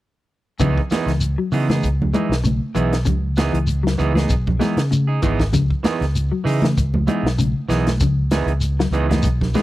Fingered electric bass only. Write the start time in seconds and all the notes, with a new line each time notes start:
0.61 C#2
0.91 muted fingered electric bass stroke
1.06 C#2
1.52 C#3
1.84 C#2
2.29 B1
2.75 B1
3.07 C#2
3.54 C#2
4.00 C#2
4.31 B1
4.77 C#3
5.22 G#1
5.54 C#2
5.85 muted fingered electric bass stroke
6.01 C#2
6.45 C#3
6.78 C#2
7.23 B1
7.69 B1
8.00 C#2
8.46 C#2
8.91 C#2
9.24 B1